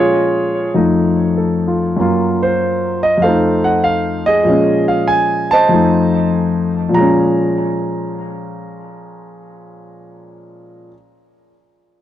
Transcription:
0.00 0.73 A#2 soft
0.00 0.73 F3 soft
0.00 0.75 G#3 soft
0.00 0.76 C#4 medium
0.00 0.71 F4 medium
0.00 0.71 G#4 medium
0.00 0.70 C#5 medium
0.74 1.98 F2 medium
0.74 1.98 F3 medium
0.74 1.98 A3 soft
0.74 1.98 D#4 medium
1.37 1.85 A4 soft
1.67 2.00 F4 soft
1.97 3.21 F#2 medium
1.97 3.22 F#3 soft
1.97 3.22 A#3 soft
2.01 2.41 F4 medium
2.42 3.18 F4 medium
2.42 2.99 C5 medium
3.03 3.20 D#5 medium
3.18 4.43 F2 medium
3.18 4.44 F3 soft
3.22 4.47 A3 soft
3.22 4.42 A4 medium
3.22 4.42 C5 medium
3.22 3.65 F5 medium
3.28 4.48 D#4 medium
3.64 3.82 F#5 medium
3.84 4.23 F5 medium
4.26 5.46 G#4 medium
4.26 4.84 D#5 medium
4.43 5.68 A#2 soft
4.43 5.68 F3 soft
4.43 5.70 G#3 soft
4.49 5.71 C#4 medium
4.88 5.08 F5 medium
5.08 5.51 G#5 medium
5.51 6.71 C5 medium
5.51 6.71 D#5 medium
5.51 6.27 A5 loud
5.69 6.93 F2 medium
5.69 6.91 F3 soft
5.69 6.94 A3 medium
5.74 6.95 D#4 medium
6.89 10.89 A#2 medium
6.89 10.90 F3 medium
6.94 10.92 G#3 medium
6.94 10.87 A#5 medium
7.01 10.94 C#4 medium

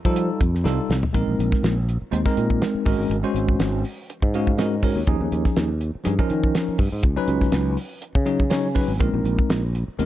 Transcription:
0.05 0.28 F3 medium
0.05 0.41 G3 medium
0.05 0.42 D#4 medium
0.05 0.42 F4 medium
0.05 0.42 A4 medium
0.05 kick medium
0.16 closed hi-hat medium
0.41 0.64 F2 medium
0.41 kick medium
0.41 closed hi-hat medium
0.55 snare soft
0.64 0.78 C2 loud
0.64 0.95 G3 medium
0.64 0.95 D#4 medium
0.64 0.95 F4 medium
0.64 0.96 A4 medium
0.64 snare medium
0.90 1.02 C2 medium
0.90 snare medium
1.03 floor tom medium
1.13 1.27 A#1 medium
1.13 1.74 G#3 medium
1.13 1.74 C4 medium
1.13 1.75 D#4 medium
1.13 1.75 A#4 medium
1.13 kick medium
1.13 closed hi-hat medium
1.28 1.38 A#1 medium
1.39 1.51 A#1 medium
1.39 closed hi-hat medium
1.52 kick medium
1.52 snare soft
1.63 1.99 A#1 medium
1.63 snare medium
1.63 closed hi-hat medium
1.89 closed hi-hat soft
2.02 muted fretless electric bass stroke soft
2.11 2.25 D#2 medium
2.11 2.20 G#3 medium
2.11 2.20 C4 medium
2.11 2.20 D#4 medium
2.11 2.20 C5 medium
2.11 closed hi-hat medium
2.25 2.84 G#3 medium
2.25 2.84 C4 medium
2.25 2.85 D#4 medium
2.25 2.85 A#4 loud
2.25 kick medium
2.25 snare soft
2.37 2.60 A#2 medium
2.37 closed hi-hat medium
2.50 kick medium
2.62 snare loud
2.62 closed hi-hat medium
2.75 muted fretless electric bass stroke soft
2.85 2.98 G#1 medium
2.85 3.16 G#3 medium
2.85 3.16 C#4 medium
2.85 3.16 F#4 medium
2.85 3.16 A#4 medium
2.85 kick medium
2.85 open hi-hat medium
2.99 3.09 G#1 medium
3.10 3.23 G#1 medium
3.10 closed hi-hat medium
3.23 3.82 G#3 medium
3.23 3.82 C#4 medium
3.23 3.83 F#4 medium
3.23 3.83 C5 medium
3.35 3.58 G#1 medium
3.35 closed hi-hat medium
3.49 kick medium
3.59 3.83 G#1 medium
3.59 snare loud
3.59 closed hi-hat medium
3.85 open hi-hat medium
4.10 closed hi-hat medium
4.22 4.92 G#2 medium
4.22 kick medium
4.34 4.50 G#3 medium
4.34 4.50 C#4 medium
4.34 4.50 F#4 medium
4.34 4.50 G#4 medium
4.34 4.57 F5 medium
4.34 closed hi-hat medium
4.47 kick medium
4.58 4.74 G#3 medium
4.58 4.74 C#4 medium
4.58 4.74 F#4 medium
4.58 4.74 A#4 medium
4.58 4.81 D#5 medium
4.58 snare medium
4.58 closed hi-hat medium
4.83 4.99 G#3 medium
4.83 4.99 C#4 medium
4.83 4.99 F#4 medium
4.83 4.99 A#4 medium
4.83 5.06 C#5 medium
4.83 kick medium
4.83 open hi-hat medium
4.96 5.06 D#2 medium
5.07 5.20 D#2 medium
5.07 5.68 F3 medium
5.07 5.68 C#4 medium
5.07 5.68 D#4 medium
5.07 5.68 G#4 medium
5.07 kick medium
5.07 closed hi-hat medium
5.21 5.31 D#2 medium
5.32 5.45 D#2 medium
5.32 closed hi-hat medium
5.45 kick medium
5.45 snare soft
5.56 5.92 D#2 medium
5.56 snare loud
5.56 closed hi-hat medium
5.81 closed hi-hat medium
5.95 muted fretless electric bass stroke soft
6.04 6.18 G2 medium
6.04 6.13 F3 medium
6.04 6.13 C#4 medium
6.04 6.13 D#4 medium
6.04 6.13 G#4 medium
6.04 closed hi-hat medium
6.18 6.77 F3 medium
6.18 6.78 C#4 medium
6.18 6.78 D#4 medium
6.18 6.78 A#4 medium
6.18 kick medium
6.30 6.53 D#3 medium
6.30 closed hi-hat medium
6.44 kick medium
6.55 snare loud
6.55 closed hi-hat medium
6.69 muted fretless electric bass stroke soft
6.78 6.92 G2 medium
6.78 kick medium
6.78 open hi-hat medium
6.92 7.03 G#2 medium
7.03 7.16 C#2 medium
7.03 kick loud
7.03 closed hi-hat medium
7.16 7.76 F#3 medium
7.16 7.76 C#4 medium
7.16 7.76 D#4 medium
7.16 7.76 B4 loud
7.28 7.51 C#2 medium
7.28 closed hi-hat medium
7.41 kick medium
7.41 snare soft
7.52 7.76 C#2 medium
7.52 snare loud
7.52 closed hi-hat medium
7.77 open hi-hat medium
8.02 closed hi-hat medium
8.15 8.85 C#3 medium
8.15 kick medium
8.25 8.42 F#3 medium
8.25 8.42 C#4 medium
8.25 8.42 D#4 medium
8.25 8.42 G#4 medium
8.25 closed hi-hat medium
8.40 kick medium
8.50 8.66 F#3 medium
8.50 8.66 C#4 medium
8.50 8.66 D#4 medium
8.50 8.67 C#5 medium
8.50 8.97 G#5 medium
8.50 snare loud
8.50 closed hi-hat medium
8.75 8.91 F#3 medium
8.75 8.91 C#4 medium
8.75 8.91 D#4 medium
8.75 8.91 B4 medium
8.75 kick medium
8.75 open hi-hat medium
8.88 8.99 G#1 medium
8.99 9.13 A#1 medium
8.99 9.60 G#3 medium
8.99 9.60 C4 medium
8.99 9.61 D#4 medium
8.99 9.61 A#4 medium
8.99 kick loud
8.99 closed hi-hat medium
9.14 9.24 A#1 medium
9.24 9.37 A#1 medium
9.24 closed hi-hat soft
9.39 kick medium
9.49 9.85 A#1 medium
9.49 snare loud
9.49 closed hi-hat medium
9.75 closed hi-hat medium
9.88 muted fretless electric bass stroke soft
9.99 10.05 D#2 medium
9.99 10.05 G#3 medium
9.99 10.05 C4 medium
9.99 10.05 D#4 medium
9.99 10.05 A#4 medium
9.99 closed hi-hat medium

